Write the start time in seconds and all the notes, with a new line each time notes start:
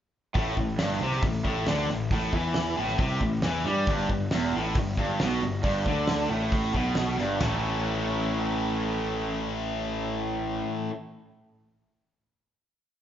0.35 A1 A2, kick, open hi-hat
0.57 A1 A2, kick
0.78 G1 G2, snare, open hi-hat
1.00 C2 C3
1.12 snare
1.22 A1 A2, kick, open hi-hat
1.45 A1 A2, kick
1.67 D2 D3, snare, open hi-hat
1.89 A1 A2, snare
2.11 A1 A2, kick, open hi-hat
2.33 E2 E3, kick
2.54 snare, open hi-hat
2.77 A1 A2
2.88 snare
2.98 C2 C3, kick, open hi-hat
3.21 A1 A2, kick
3.42 E2 E3, snare, open hi-hat
3.64 G2 G3, snare
3.87 G1 G2, kick, open hi-hat
4.09 G1 G2, kick
4.31 E1 E2, snare, open hi-hat
4.53 A1 A2
4.75 G1 G2, kick, open hi-hat
4.97 G1 G2, kick
5.20 B1 B2, snare, open hi-hat
5.41 G1 G2
5.63 G1 G2, kick, open hi-hat
5.86 D2 D3, kick
6.07 snare, open hi-hat
6.30 A1 A2
6.52 kick, open hi-hat
6.74 B1 B2, kick
6.95 snare, open hi-hat
7.17 G1 G2, snare
7.40 A1 A2 E3 A3 C#4 E4, snare, floor tom, ride bell